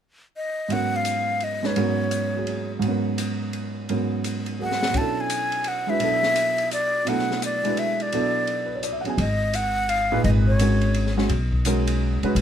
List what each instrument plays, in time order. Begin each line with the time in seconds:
0.37 flute D#5
0.68 grand piano G#2 F#3 B3 C#4, flute F#5, ride
0.73 grand piano A#4
0.96 flute F5
1.05 hi-hat pedal, ride
1.40 flute D#5, ride
1.63 grand piano G#3 C#4 D#4 B4, flute C#5, snare
1.76 grand piano G#2 F#3 B3 C#4 A#4, ride
2.11 hi-hat pedal, ride
2.35 grand piano F#3 A#3 G#4
2.47 ride
2.79 grand piano G#2 F#3, ride
2.84 grand piano B3 C#4
2.90 grand piano A#4
3.18 hi-hat pedal, ride
3.53 ride
3.89 grand piano G#2 F#3 B3 C#4 A#4, ride
4.24 hi-hat pedal, ride
4.46 ride
4.59 grand piano F#3 A#3 G#4, flute F#5
4.72 snare
4.83 snare
4.90 grand piano B2 F#3
4.94 grand piano C#4 D4, flute A5, kick, ride
4.99 grand piano E4 A4
5.21 flute G#5
5.30 hi-hat pedal, ride
5.52 ride
5.64 flute F#5, ride
5.87 grand piano G#3 D4 E4 F#4 B4, flute E5
5.99 grand piano B2 F#3 B3 D4, ride
6.03 grand piano E4 A4
6.23 snare
6.36 hi-hat pedal, ride
6.58 ride
6.71 flute D5, hi-hat pedal, ride
7.05 grand piano B2 F#3 B3 D4 E4, flute F#5, ride
7.10 grand piano A3
7.19 snare
7.31 snare
7.42 flute D5, hi-hat pedal, ride
7.63 grand piano G#3 D4 E4 F#4 B4, ride
7.77 flute E5, ride
8.00 flute D5, ride
8.12 grand piano B2 F#3 B3 D4 E4 A4, ride
8.47 ride
8.66 grand piano B4
8.75 grand piano C#5
8.83 grand piano D5, hi-hat pedal, ride
8.92 grand piano E5
9.01 grand piano F#3 F#5
9.05 grand piano B3 C#4 G#4, ride
9.09 grand piano G#5
9.18 upright bass G#1, flute D#5, ride
9.53 flute F#5, hi-hat pedal, ride
9.89 flute F5, ride
10.12 grand piano A#2 D#4 G#4 B4
10.24 upright bass G#1, flute D#5, ride
10.47 flute C#5
10.59 grand piano G#3 C#4 F#4 A#4, hi-hat pedal, ride
10.81 ride
10.94 ride
11.07 snare
11.17 grand piano G#3 C#4 F#4 C#5, snare
11.29 upright bass B1, ride
11.53 kick
11.65 grand piano G#3 C#4 F#4 A#4, hi-hat pedal, ride
11.87 ride
12.23 grand piano G#3 C#4 F#4 B4, muted upright bass stroke, ride
12.35 upright bass G#1, ride